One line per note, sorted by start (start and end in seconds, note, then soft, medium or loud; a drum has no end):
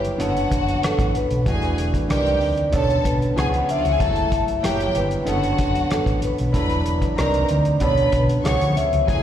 0.00 0.12 G1 medium
0.00 0.19 A#2 medium
0.00 0.19 F#3 medium
0.00 0.19 E4 medium
0.00 0.19 G4 medium
0.00 0.80 B4 medium
0.05 closed hi-hat soft
0.18 0.44 F#1 medium
0.18 1.43 D3 medium
0.18 1.43 B3 medium
0.18 1.44 C#4 medium
0.18 1.13 F#4 medium
0.18 1.44 A4 medium
0.18 1.13 F#5 medium
0.18 closed hi-hat medium
0.37 closed hi-hat soft
0.52 0.76 F#1 medium
0.52 kick medium
0.52 closed hi-hat medium
0.68 closed hi-hat soft
0.83 1.14 A4 medium
0.83 muted fingered electric bass stroke soft
0.83 cross-stick medium
0.83 closed hi-hat medium
0.99 1.11 A1 medium
0.99 kick medium
0.99 closed hi-hat soft
1.15 2.14 B4 medium
1.15 closed hi-hat medium
1.31 1.48 B1 medium
1.31 closed hi-hat soft
1.46 1.96 E1 medium
1.46 2.10 E3 medium
1.46 2.10 A3 medium
1.46 2.08 D4 medium
1.46 2.10 F#4 medium
1.46 1.78 G#4 medium
1.46 1.78 G#5 medium
1.46 kick loud
1.46 closed hi-hat medium
1.62 cross-stick soft
1.62 closed hi-hat soft
1.78 closed hi-hat medium
1.94 kick medium
1.94 closed hi-hat soft
2.09 2.42 C2 medium
2.09 2.16 D3 soft
2.09 2.73 C4 soft
2.09 2.73 D4 soft
2.09 2.41 G4 medium
2.09 2.73 A#4 medium
2.09 2.76 D5 medium
2.09 2.41 G5 medium
2.09 cross-stick medium
2.09 closed hi-hat medium
2.15 2.76 D#4 medium
2.26 closed hi-hat soft
2.41 2.67 D2 medium
2.41 open hi-hat soft
2.58 closed hi-hat soft
2.72 2.98 B1 medium
2.72 3.36 D3 medium
2.72 3.35 B3 medium
2.72 3.35 C#4 medium
2.72 3.37 A4 medium
2.72 3.05 A4 medium
2.72 2.88 C#5 medium
2.72 3.05 A5 medium
2.72 kick medium
2.72 closed hi-hat medium
2.90 closed hi-hat soft
3.05 3.30 B1 medium
3.05 3.38 B4 medium
3.05 kick medium
3.05 closed hi-hat medium
3.22 closed hi-hat soft
3.36 3.62 C#2 medium
3.36 4.00 F3 medium
3.36 4.00 B3 medium
3.36 4.00 C#4 medium
3.36 3.52 G#4 medium
3.36 4.01 G#4 medium
3.36 3.70 F#5 medium
3.36 3.52 G#5 medium
3.36 cross-stick medium
3.36 closed hi-hat medium
3.53 3.61 B3 medium
3.53 3.61 B4 medium
3.53 closed hi-hat soft
3.61 3.68 C#4 medium
3.61 3.69 C#5 medium
3.69 3.77 D4 medium
3.69 3.78 D5 medium
3.69 4.61 E5 medium
3.69 closed hi-hat medium
3.77 3.85 F4 medium
3.77 3.85 F5 medium
3.83 3.97 C#2 medium
3.83 3.92 F#4 medium
3.83 3.92 F#5 medium
3.83 closed hi-hat soft
3.92 4.00 G#4 medium
3.92 4.00 G#5 medium
4.00 4.50 F#1 medium
4.00 4.62 F#3 medium
4.00 4.64 A3 medium
4.00 4.62 E4 medium
4.00 4.31 A4 medium
4.00 4.64 A4 medium
4.00 4.31 A5 medium
4.00 kick loud
4.00 closed hi-hat medium
4.16 closed hi-hat soft
4.32 kick medium
4.32 closed hi-hat medium
4.48 closed hi-hat soft
4.62 4.89 F#1 medium
4.62 5.27 A#2 soft
4.62 5.27 F#3 medium
4.62 5.27 E4 medium
4.62 4.94 G4 medium
4.62 5.28 G4 medium
4.62 4.94 G5 medium
4.62 cross-stick medium
4.62 closed hi-hat medium
4.66 4.95 C#5 medium
4.80 closed hi-hat soft
4.95 5.21 G1 medium
4.95 5.94 B4 medium
4.95 closed hi-hat medium
5.11 closed hi-hat soft
5.25 5.52 F#1 medium
5.25 6.51 D3 medium
5.25 6.51 B3 medium
5.25 6.52 C#4 medium
5.25 6.20 F#4 medium
5.25 6.52 A4 medium
5.25 6.20 F#5 medium
5.25 closed hi-hat medium
5.43 closed hi-hat soft
5.58 5.72 F#1 medium
5.58 kick medium
5.58 closed hi-hat medium
5.75 closed hi-hat soft
5.91 6.06 A4 medium
5.91 muted fingered electric bass stroke soft
5.91 cross-stick medium
5.91 closed hi-hat medium
6.06 6.19 A1 medium
6.06 kick medium
6.06 closed hi-hat soft
6.22 7.21 B4 medium
6.22 closed hi-hat medium
6.38 6.51 B1 medium
6.38 closed hi-hat soft
6.53 7.04 E1 loud
6.53 7.17 F#3 medium
6.53 7.17 D4 medium
6.53 7.17 E4 medium
6.53 7.18 A4 medium
6.53 6.85 B4 medium
6.53 6.85 B5 medium
6.53 kick loud
6.53 closed hi-hat medium
6.70 cross-stick soft
6.70 closed hi-hat soft
6.86 closed hi-hat medium
7.02 kick medium
7.02 closed hi-hat soft
7.17 7.43 C2 medium
7.17 7.81 C4 medium
7.17 7.81 D4 medium
7.17 7.81 D#4 medium
7.17 7.49 A#4 medium
7.17 7.82 A#4 medium
7.17 7.84 D5 medium
7.17 7.49 A#5 medium
7.17 cross-stick medium
7.17 closed hi-hat medium
7.34 closed hi-hat soft
7.49 7.75 D2 medium
7.49 closed hi-hat medium
7.65 closed hi-hat soft
7.80 8.06 B1 loud
7.80 8.45 D3 medium
7.80 8.43 B3 medium
7.80 8.43 C#4 medium
7.80 8.45 A4 medium
7.80 8.13 B4 medium
7.80 8.15 C#5 medium
7.80 8.13 B5 medium
7.80 kick medium
7.80 closed hi-hat medium
7.97 closed hi-hat soft
8.12 8.38 B1 medium
8.12 8.28 B4 medium
8.12 kick medium
8.12 closed hi-hat medium
8.29 closed hi-hat soft
8.44 8.58 C#2 medium
8.44 9.08 F3 medium
8.44 9.08 B3 soft
8.44 9.08 C#4 medium
8.44 9.07 G#4 medium
8.44 8.76 C#5 medium
8.44 8.78 F#5 medium
8.44 8.76 C#6 medium
8.44 cross-stick medium
8.44 closed hi-hat medium
8.61 8.73 D2 medium
8.61 closed hi-hat soft
8.77 9.23 E5 medium
8.77 closed hi-hat medium
8.93 9.05 C#2 medium
8.93 closed hi-hat soft
9.07 9.23 F#1 medium
9.07 9.23 F#3 medium
9.07 9.23 A3 medium
9.07 9.23 E4 soft
9.07 9.23 G#4 medium
9.07 9.23 G#5 medium
9.07 kick loud
9.07 closed hi-hat medium